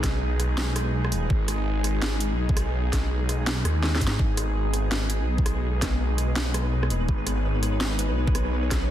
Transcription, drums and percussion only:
0.04 kick, cross-stick, snare, closed hi-hat
0.40 cross-stick, closed hi-hat
0.58 snare
0.76 cross-stick, closed hi-hat
1.04 cross-stick
1.12 closed hi-hat
1.30 kick
1.48 cross-stick, closed hi-hat
1.84 cross-stick, closed hi-hat
2.02 snare
2.20 closed hi-hat
2.49 kick
2.57 cross-stick, closed hi-hat
2.93 kick, cross-stick, snare, closed hi-hat
3.29 cross-stick, closed hi-hat
3.47 snare
3.65 cross-stick, closed hi-hat
3.83 snare
3.95 snare
4.01 kick, closed hi-hat
4.07 snare
4.19 kick
4.37 cross-stick, closed hi-hat
4.74 cross-stick, closed hi-hat
4.92 snare
5.10 closed hi-hat
5.38 kick
5.46 cross-stick, closed hi-hat
5.82 kick, cross-stick, snare, closed hi-hat
6.18 cross-stick, closed hi-hat
6.36 snare
6.54 cross-stick, closed hi-hat
6.83 cross-stick
6.90 closed hi-hat
7.09 kick
7.27 cross-stick, closed hi-hat
7.63 cross-stick, closed hi-hat
7.81 snare
7.99 closed hi-hat
8.28 kick
8.35 cross-stick, closed hi-hat
8.71 kick, cross-stick, snare, closed hi-hat

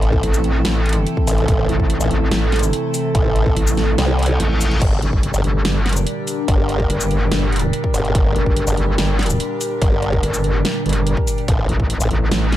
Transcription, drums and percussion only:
0.02 closed hi-hat
0.13 kick
0.23 closed hi-hat
0.34 shaker
0.44 closed hi-hat
0.65 snare, closed hi-hat
0.86 closed hi-hat
0.89 closed hi-hat
0.93 closed hi-hat
1.07 closed hi-hat
1.17 kick
1.27 open hi-hat, shaker
1.38 closed hi-hat
1.48 kick, closed hi-hat
1.69 closed hi-hat
1.80 kick
1.90 closed hi-hat
2.00 shaker
2.11 closed hi-hat
2.31 snare, closed hi-hat
2.52 snare, closed hi-hat
2.56 closed hi-hat
2.59 closed hi-hat, shaker
2.73 closed hi-hat
2.94 open hi-hat, shaker
3.15 kick, closed hi-hat
3.36 closed hi-hat
3.46 kick
3.57 closed hi-hat
3.67 shaker
3.77 snare, closed hi-hat
3.98 snare, closed hi-hat
4.19 closed hi-hat
4.23 closed hi-hat
4.26 closed hi-hat
4.40 closed hi-hat
4.61 open hi-hat, shaker
4.71 closed hi-hat
4.82 kick, closed hi-hat, crash
5.02 closed hi-hat
5.13 kick
5.23 closed hi-hat
5.34 shaker
5.44 closed hi-hat
5.65 snare, closed hi-hat
5.86 snare, closed hi-hat
5.89 closed hi-hat
5.93 closed hi-hat, shaker
6.07 closed hi-hat
6.27 open hi-hat, shaker
6.48 kick, closed hi-hat
6.69 closed hi-hat
6.80 kick
6.90 closed hi-hat
7.00 shaker
7.11 closed hi-hat
7.32 snare, closed hi-hat
7.52 closed hi-hat
7.56 closed hi-hat
7.59 closed hi-hat
7.73 closed hi-hat
7.84 kick
7.94 open hi-hat, shaker
8.05 closed hi-hat
8.15 kick, closed hi-hat
8.36 closed hi-hat
8.46 kick
8.57 closed hi-hat
8.67 shaker
8.77 closed hi-hat
8.98 snare, closed hi-hat
9.19 snare, closed hi-hat
9.23 closed hi-hat
9.26 closed hi-hat, shaker
9.40 closed hi-hat
9.61 open hi-hat, shaker
9.82 kick, closed hi-hat
10.02 closed hi-hat
10.13 kick
10.23 closed hi-hat
10.34 shaker
10.44 closed hi-hat
10.65 snare, closed hi-hat
10.86 closed hi-hat
10.89 closed hi-hat
10.93 closed hi-hat
11.07 closed hi-hat
11.17 kick
11.27 open hi-hat, shaker
11.38 closed hi-hat
11.48 kick, closed hi-hat
11.69 closed hi-hat
11.80 kick
11.90 closed hi-hat
12.00 shaker
12.11 closed hi-hat
12.31 snare, closed hi-hat
12.52 snare, closed hi-hat

